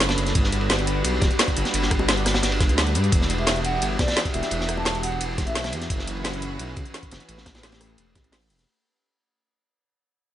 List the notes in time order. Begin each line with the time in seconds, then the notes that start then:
Already playing: F#1 A3 C#4 D4 B4
0.00 snare, closed hi-hat, ride
0.09 snare, closed hi-hat, ride
0.18 F#1, closed hi-hat, ride
0.27 snare, closed hi-hat
0.35 G1 G3 F#4, kick, closed hi-hat, ride
0.44 snare
0.52 closed hi-hat, ride
0.61 ride
0.69 snare, closed hi-hat, ride
0.79 closed hi-hat
0.87 closed hi-hat, ride
1.04 B1, closed hi-hat, ride
1.21 D1, kick, snare, closed hi-hat, ride, high bongo
1.31 closed hi-hat, ride
1.39 snare, closed hi-hat, ride
1.48 kick, closed hi-hat
1.57 G1, closed hi-hat, ride
1.65 snare, closed hi-hat
1.74 G1, closed hi-hat, ride
1.82 snare
1.91 kick, cross-stick, closed hi-hat, ride
1.99 high bongo
2.08 snare, closed hi-hat, ride
2.17 closed hi-hat, ride
2.26 cross-stick, snare, open hi-hat, ride
2.34 snare, ride
2.43 G1, snare, closed hi-hat, ride
2.52 ride
2.60 kick, snare, closed hi-hat, ride
2.69 D2, closed hi-hat, ride
2.78 snare, closed hi-hat, ride
2.87 closed hi-hat
2.95 G2, closed hi-hat, ride
3.04 closed hi-hat
3.12 E1 E3 F#4 G4, kick, closed hi-hat, ride
3.22 snare
3.30 closed hi-hat, ride
3.38 E5, ride
3.47 snare, closed hi-hat, ride
3.56 closed hi-hat
3.64 F#5, closed hi-hat, ride
3.82 G1, closed hi-hat, ride
3.99 B1 D5, kick, snare, closed hi-hat, ride, high bongo
4.08 snare, closed hi-hat, ride
4.12 snare, ride
4.16 snare, closed hi-hat, ride
4.25 kick, closed hi-hat
4.34 E1 E5, closed hi-hat, ride
4.42 snare, closed hi-hat
4.51 E1, closed hi-hat, ride
4.61 snare
4.69 cross-stick, closed hi-hat, ride
4.77 A5, high bongo
4.85 snare, closed hi-hat, ride
4.95 closed hi-hat, ride
5.03 F#5, open hi-hat, ride
5.12 ride
5.21 E1, closed hi-hat, ride
5.38 kick, snare, closed hi-hat, ride
5.47 B1 E5, closed hi-hat, ride
5.55 snare, closed hi-hat, ride
5.64 snare, closed hi-hat, ride
5.72 E2, closed hi-hat, ride
5.81 snare, closed hi-hat
5.90 F#1 E3 C#4 F#4 B4, kick, closed hi-hat, ride
5.99 snare
6.07 closed hi-hat, ride
6.17 ride
6.25 snare, closed hi-hat, ride
6.33 closed hi-hat
6.42 closed hi-hat, ride
6.59 B1, closed hi-hat, ride
6.76 C#2, kick, closed hi-hat, ride, high bongo
6.86 closed hi-hat
6.94 snare, closed hi-hat, ride
7.02 kick, closed hi-hat, ride
7.11 F#1, snare, closed hi-hat, ride
7.20 closed hi-hat
7.28 A1 A3 G4, closed hi-hat, ride
7.38 snare
7.46 kick, cross-stick, snare, closed hi-hat, ride
7.55 snare, ride, high bongo
7.63 snare, closed hi-hat, ride
7.72 snare, closed hi-hat, ride
7.81 cross-stick, open hi-hat, ride
7.89 ride
7.98 E1, closed hi-hat, ride
8.15 A1, kick, snare, closed hi-hat, ride, high bongo
8.24 closed hi-hat, ride
8.32 snare, closed hi-hat, open hi-hat
8.42 closed hi-hat
8.50 E1, closed hi-hat, ride
8.59 snare, closed hi-hat